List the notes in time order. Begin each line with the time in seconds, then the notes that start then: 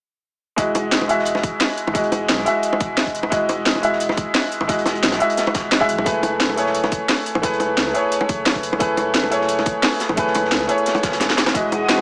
0.56 E1 G#3 E4 F#4 D#5, kick, closed hi-hat
0.75 closed hi-hat, high bongo
0.92 snare, closed hi-hat
1.01 high bongo
1.08 G#3 E4 F#4 E5, closed hi-hat
1.19 snare
1.25 closed hi-hat
1.35 snare, high bongo
1.43 kick, closed hi-hat
1.60 snare, closed hi-hat, open hi-hat, high bongo
1.77 closed hi-hat
1.87 G#1, high bongo
1.93 E1 G#3 E4 F#4 D#5, kick, closed hi-hat
2.04 closed hi-hat
2.12 closed hi-hat, high bongo
2.29 B1, snare, closed hi-hat
2.39 snare, high bongo
2.45 G#3 E4 F#4 E5, closed hi-hat
2.63 closed hi-hat
2.73 high bongo
2.80 E1, kick, closed hi-hat
2.97 snare, closed hi-hat, high bongo
3.07 kick, closed hi-hat
3.15 closed hi-hat
3.23 high bongo
3.30 E1 G#3 E4 F#4 D#5, kick, closed hi-hat
3.49 closed hi-hat, high bongo
3.66 snare, closed hi-hat
3.75 high bongo
3.82 G#3 E4 F#4 E5, closed hi-hat
3.93 snare
4.00 closed hi-hat
4.09 snare, high bongo
4.17 kick, closed hi-hat
4.35 snare, closed hi-hat, open hi-hat, high bongo
4.52 closed hi-hat
4.61 G#1, high bongo
4.67 E1 G#3 E4 F#4 D#5, kick, closed hi-hat
4.79 closed hi-hat
4.86 snare, closed hi-hat, high bongo
4.95 closed hi-hat
5.03 B1, snare, closed hi-hat
5.12 snare, closed hi-hat, high bongo
5.19 G#3 E4 F#4 E5, closed hi-hat
5.30 closed hi-hat
5.37 snare, closed hi-hat
5.46 closed hi-hat, high bongo
5.54 E1, kick, snare, closed hi-hat
5.72 snare, closed hi-hat, high bongo
5.80 G#3 E4 F#4 E5, kick, snare
5.89 B1, closed hi-hat
5.98 high bongo
6.05 F#1 A3 E4 G#4 B4, kick, closed hi-hat
6.23 closed hi-hat, high bongo
6.40 snare, closed hi-hat
6.49 high bongo
6.56 A3 E4 G#4 C#5, closed hi-hat
6.66 snare
6.74 closed hi-hat
6.83 snare, high bongo
6.92 kick, closed hi-hat
7.09 snare, closed hi-hat, open hi-hat, high bongo
7.26 closed hi-hat
7.35 A1, high bongo
7.42 F#1 A3 E4 G#4 B4, kick, closed hi-hat
7.53 closed hi-hat
7.60 closed hi-hat, high bongo
7.77 C#2, snare, closed hi-hat
7.87 snare, high bongo
7.93 A3 E4 G#4 C#5, closed hi-hat
8.12 closed hi-hat
8.21 high bongo
8.29 F#1, kick, closed hi-hat
8.46 snare, closed hi-hat, high bongo
8.55 kick, closed hi-hat
8.63 closed hi-hat
8.73 high bongo
8.79 F#1 A3 E4 G#4 B4, kick, closed hi-hat
8.97 closed hi-hat, high bongo
9.14 snare, closed hi-hat
9.24 high bongo
9.30 A3 E4 G#4 C#5, closed hi-hat
9.41 snare
9.48 closed hi-hat
9.58 snare, high bongo
9.66 kick, closed hi-hat
9.82 snare, closed hi-hat, open hi-hat, high bongo
10.00 snare, closed hi-hat
10.09 A1, high bongo
10.16 F#1 A3 E4 G#4 B4, kick, closed hi-hat
10.27 snare
10.35 closed hi-hat, high bongo
10.45 snare
10.51 C#2, snare, closed hi-hat
10.61 snare, high bongo
10.67 A3 E4 G#4 C#5, closed hi-hat
10.78 closed hi-hat
10.86 snare, closed hi-hat
10.95 closed hi-hat, high bongo
11.03 F#1, kick, snare, closed hi-hat
11.12 snare, closed hi-hat
11.20 E1, snare, closed hi-hat, high bongo
11.29 snare, closed hi-hat
11.38 snare, closed hi-hat
11.46 snare, closed hi-hat, high bongo
11.53 E1 G#3 E4 F#4 D#5 D#6, kick, closed hi-hat
11.72 closed hi-hat, high bongo
11.89 snare, closed hi-hat
11.98 high bongo